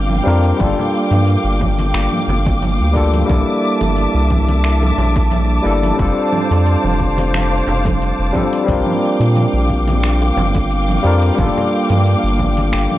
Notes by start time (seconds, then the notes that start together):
Already playing: G1 G3 A#3 C4 D4 F4 A#4 F5 G5 D6
0.10 low conga, shaker
0.24 F2 G3 C4 D4 F4 A#4, shaker
0.44 open hi-hat, shaker
0.56 G3 A#3 D4, kick, open hi-hat, low conga, shaker
0.60 G1 F4 A4
0.78 low conga, shaker
0.94 shaker
1.11 G2, open hi-hat, high bongo, low conga, shaker
1.27 open hi-hat, shaker
1.44 G1, shaker
1.61 kick, high conga, low conga, shaker
1.79 open hi-hat, high conga, shaker
1.94 G1, finger snap, open hi-hat
2.12 low conga
2.28 G1, high conga, low conga, shaker
2.46 kick, open hi-hat, high bongo, high conga, shaker
2.62 open hi-hat, low conga, shaker
2.79 D2, shaker
2.93 G3 A#3 D4 F4, kick, high bongo, shaker
2.97 A4
3.14 open hi-hat, low conga, shaker
3.26 C2 G3 A#3 D4, open hi-hat, low conga
3.30 E4 A4 E5 A5, kick, low conga, shaker
3.64 shaker
3.81 G1, open hi-hat, high bongo, low conga, shaker
3.96 open hi-hat, shaker
4.14 C2, shaker
4.30 kick, high conga, low conga, shaker
4.48 open hi-hat, high conga, shaker
4.64 finger snap, open hi-hat, shaker
4.82 high bongo, low conga
4.98 A#1, low conga, shaker
5.16 kick, open hi-hat, high bongo, high conga, shaker
5.31 open hi-hat, low conga, shaker
5.50 shaker
5.62 G1 G3 A#3 D4 E4, shaker
5.66 A4
5.83 open hi-hat, low conga, shaker
5.94 G3 C4
5.98 F1 D4 F4 A4 C5 F5, kick, open hi-hat, low conga, shaker
6.32 low conga, shaker
6.51 F2, open hi-hat, high bongo, shaker
6.66 open hi-hat, shaker
6.84 F1, low conga, shaker
7.00 kick, high conga, shaker
7.18 open hi-hat, high conga, shaker
7.34 finger snap, open hi-hat, low conga, shaker
7.67 F1, low conga, shaker
7.85 kick, open hi-hat, high bongo, high conga, low conga, shaker
8.02 open hi-hat, shaker
8.19 F1, shaker
8.32 G3 C4 D4 F4 A4, kick, high bongo, low conga, shaker
8.53 open hi-hat, shaker
8.64 G3 C4 D4
8.68 A#1 A#3 F4 A#4 F5 G5 D6, kick, open hi-hat, low conga, shaker
8.86 low conga
9.03 shaker
9.20 A#2, open hi-hat, high bongo, shaker
9.36 open hi-hat, low conga, shaker
9.53 A#1, shaker
9.70 kick, high conga, shaker
9.88 open hi-hat, high conga, low conga, shaker
10.04 finger snap, open hi-hat, shaker
10.22 high bongo
10.37 G1, low conga, shaker
10.55 kick, open hi-hat, high bongo, high conga, shaker
10.71 open hi-hat, shaker
10.88 low conga, shaker
11.03 F2 G3 C4 D4 F4 A#4, shaker
11.22 open hi-hat, shaker
11.34 G1 G3 A#3, open hi-hat, low conga
11.38 D4 F4, kick, low conga, shaker
11.43 A4
11.56 low conga, shaker
11.72 shaker
11.90 G2, open hi-hat, high bongo, low conga, shaker
12.06 open hi-hat, shaker
12.24 G1, shaker
12.39 kick, high conga, low conga, shaker
12.57 open hi-hat, high conga, shaker
12.73 G1, finger snap, open hi-hat, shaker
12.91 low conga, shaker